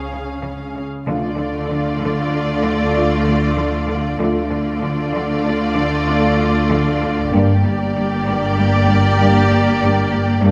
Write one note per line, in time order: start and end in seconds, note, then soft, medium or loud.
0.00 0.84 C#2 soft
0.00 0.84 C#3 soft
0.00 0.83 C#4 soft
0.00 0.83 G#4 soft
0.00 0.84 F5 soft
0.14 0.33 C#3 soft
0.45 0.64 C#3 soft
0.77 0.95 C#3 soft
1.07 4.16 D2 soft
1.07 1.97 D3 medium
1.07 4.16 D3 soft
1.07 1.27 D3 soft
1.07 4.16 A3 medium
1.07 1.30 A3 soft
1.07 4.16 F4 soft
1.07 1.30 F4 soft
1.07 4.17 D5 medium
1.39 1.58 D3 soft
1.71 1.89 D3 soft
2.02 2.20 D3 medium
2.33 2.51 D4 soft
2.64 2.83 D3 medium
2.95 3.17 A3 soft
2.95 3.14 D4 soft
2.95 3.17 F4 soft
3.27 3.45 D3 soft
3.57 3.76 D3 soft
3.89 4.08 D3 soft
4.20 7.29 D2 soft
4.20 4.39 D3 medium
4.20 7.29 D3 medium
4.20 4.42 A3 soft
4.20 7.29 A3 medium
4.20 4.42 F4 soft
4.20 7.29 F4 soft
4.20 7.29 D5 medium
4.51 4.70 D3 soft
4.83 5.02 D3 soft
5.14 5.33 D3 medium
5.46 5.64 D4 soft
5.77 5.96 D3 medium
6.07 6.29 A3 soft
6.07 6.27 D4 soft
6.07 6.29 F4 soft
6.39 6.58 D3 soft
6.70 6.89 D3 medium
7.02 7.21 D3 soft
7.31 10.44 G1 medium
7.31 10.44 G2 medium
7.31 7.52 G2 medium
7.31 7.54 A#3 medium
7.31 10.41 A#3 medium
7.31 7.53 D4 soft
7.31 10.41 G4 medium
7.31 10.41 D5 medium
7.64 7.83 G2 soft
7.96 8.15 G2 soft
8.27 8.46 G2 medium
8.57 8.76 G3 soft
8.88 9.07 G2 medium
9.20 9.39 G3 soft
9.20 9.42 A#3 medium
9.20 9.42 D4 medium
9.51 9.70 G2 soft
9.82 10.01 G2 medium
10.13 10.32 G2 soft
10.44 10.51 G1 medium
10.44 10.51 G2 medium
10.44 10.51 A#3 medium
10.44 10.51 D4 medium
10.44 10.51 G4 medium
10.44 10.51 D5 medium